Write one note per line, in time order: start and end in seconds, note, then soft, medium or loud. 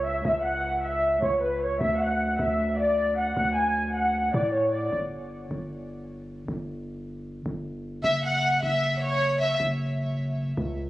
0.00 0.21 C#2 loud
0.05 0.21 E5 medium
0.25 1.18 C#2 loud
0.25 0.41 E5 loud
0.45 0.81 F#5 medium
0.83 1.20 E5 medium
1.22 1.78 C#2 loud
1.22 1.38 C#5 medium
1.42 1.57 B4 medium
1.62 1.77 C#5 medium
1.81 2.37 D2 loud
1.81 1.96 E5 loud
2.01 2.37 F#5 medium
2.39 3.33 D2 loud
2.39 2.76 E5 medium
2.79 3.15 D5 medium
3.17 3.33 F#5 medium
3.37 4.30 D2 loud
3.37 3.52 F#5 loud
3.56 3.93 G#5 medium
3.95 4.32 F#5 medium
4.34 4.90 A2 loud
4.34 4.50 D5 medium
4.54 4.69 C#5 medium
4.73 4.88 D5 medium
4.93 5.49 G1 loud
5.51 6.44 G1 loud
6.48 7.42 G1 loud
7.46 8.02 G1 loud
8.04 8.60 F#1 loud
8.04 8.20 E5 loud
8.24 8.60 F#5 medium
8.63 9.56 F#1 loud
8.63 8.99 E5 medium
9.01 9.38 C#5 loud
9.41 9.56 E5 medium
9.60 10.54 F#1 loud
10.57 10.90 C#2 loud